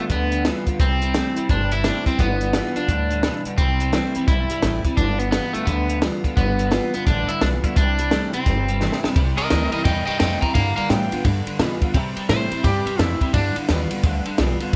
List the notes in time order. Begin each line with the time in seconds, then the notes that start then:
0.00 B3
0.10 D2 G2 D3 B3, kick, closed hi-hat
0.32 G2 D3, closed hi-hat
0.45 G2 E3 G3 B3 F4, snare, closed hi-hat
0.67 G2 D3 B3 F4, kick, closed hi-hat
0.80 C2 C3 G3 C4, kick, closed hi-hat
1.02 C3 G3, closed hi-hat
1.14 C3 E3 G3 A3 C4 E4, snare, closed hi-hat
1.36 C3 G3 C4 E4, muted upright bass stroke, closed hi-hat
1.49 G1 G2 C3 G3 D4, kick, closed hi-hat
1.71 C3 G3 E4, closed hi-hat
1.84 C3 E3 G3 A3 C4 D4 E4, snare, closed hi-hat
2.06 C3 G3 C4 E4, muted upright bass stroke, kick, closed hi-hat
2.19 G1 G2 D3 G3 B3, kick, closed hi-hat
2.41 G2 D3, closed hi-hat
2.53 G2 E3 G3 B3 F4, snare, closed hi-hat
2.76 G2 D3 B3 D4 F4, muted upright bass stroke, closed hi-hat
2.88 D2 G2 A2 D3, kick, closed hi-hat
3.10 G2 D3, closed hi-hat
3.23 G2 B2 E3, snare, closed hi-hat
3.45 G2 D3, muted upright bass stroke, closed hi-hat
3.58 C2 C3 G3 C4, kick, closed hi-hat
3.80 C3 G3, closed hi-hat
3.93 C3 E3 G3 A3 C4 E4, snare, closed hi-hat
4.14 C3 G3 C4 E4, muted upright bass stroke, closed hi-hat
4.28 B1 G2 C3 G3 E4, kick, closed hi-hat
4.50 C3 G3, muted upright bass stroke, closed hi-hat
4.62 A1 C3 E3 G3 A3 C4 E4, snare, closed hi-hat
4.85 C3 G3 C4 E4, kick, closed hi-hat
4.97 G1 G2 D3 G3 D4, kick, closed hi-hat
5.19 G2 D3 B3, closed hi-hat
5.31 G2 E3 G3 B3 F4, snare, closed hi-hat
5.53 G2 D3 A3 B3 F4, muted upright bass stroke, closed hi-hat
5.66 D2 G2 D3 B3, kick, closed hi-hat
5.89 G2 D3, closed hi-hat
6.01 G2 E3 G3 B3 F4, snare, closed hi-hat
6.23 G2 D3 B3 F4, muted upright bass stroke, kick, closed hi-hat
6.37 G1 G2 D3 G3 B3, kick, closed hi-hat
6.59 G2 D3, closed hi-hat
6.71 G2 E3 G3 B3 F4, snare, closed hi-hat
6.93 G2 D3 B3 F4, muted upright bass stroke, closed hi-hat
7.06 A1 G2 D3 D4, kick, snare, closed hi-hat
7.28 G2 D3 E4, closed hi-hat
7.41 B1 G2 E3 G3 B3 D4 F4, snare, closed hi-hat
7.63 G2 D3 B3 E4 F4, muted upright bass stroke, kick, closed hi-hat
7.76 C2 C3 G3 D4, kick, closed hi-hat
7.99 C3 G3, closed hi-hat
8.11 C3 E3 G3 A3 C4 E4, snare, closed hi-hat
8.33 C3 G3 C4 E4, muted upright bass stroke, closed hi-hat
8.46 G1 G2 C3 G3, kick, snare, closed hi-hat
8.68 C3 G3, closed hi-hat
8.81 C3 E3 G3 A3 C4 E4, snare
8.92 snare
9.03 C3 G3 C4 E4, muted upright bass stroke, snare
9.16 C2 C3 G3, kick, ride
9.37 C3 G3 A#4 D#5, muted upright bass stroke, ride
9.50 D2 C3 E3 G3 A3 C4 E4 A#4 D#5, snare, ride
9.72 C3 G3 C4 E4 A#4 D#5, ride
9.84 E2 G2 C3 G3 D#5 G5, kick, ride
10.06 C3 G3 D#5 G5, muted upright bass stroke, ride
10.19 F2 C3 E3 G3 A3 C4 E4 D#5 G5, snare, ride
10.41 C3 G3 C4 E4 G5 A#5, muted upright bass stroke, kick, ride
10.54 G2 D3 G3 F5 A#5, kick, ride
10.76 G2 D3 F5 A#5, muted upright bass stroke, ride
10.89 G2 A2 E3 G3 B3 F4 G5, snare, ride
11.11 G2 D3 B3 F4, muted upright bass stroke, ride
11.24 G2 D3, kick, ride
11.47 G2 D3, muted upright bass stroke, ride
11.59 G2 B2 E3 G3 B3 F4, snare, ride
11.81 G2 D3 B3 F4, muted upright bass stroke, kick, ride
11.94 C3 G3, kick, ride
12.16 C3 G3, muted upright bass stroke, ride
12.29 A2 C3 E3 G3 A3 C4 E4 C5, snare, ride
12.51 C3 G3 C4 E4, muted upright bass stroke, ride
12.64 G2 C3 G3 G4, kick, ride
12.86 C3 G3, muted upright bass stroke, ride
12.98 F2 C3 E3 G3 A3 C4 E4, snare, ride
13.21 C3 G3 C4 E4, muted upright bass stroke, kick, ride
13.34 G2 D3 G3 D4, kick, ride
13.56 G2 D3, muted upright bass stroke, ride
13.69 D#2 G2 E3 G3 B3 F4, snare, ride
13.91 G2 D3 B3 F4, muted upright bass stroke, ride
14.03 D2 G2 D3, kick, ride
14.26 G2 D3, muted upright bass stroke, ride
14.38 B1 G2 E3 G3 B3 F4, snare, ride
14.60 G2 D3 B3 F4, muted upright bass stroke, ride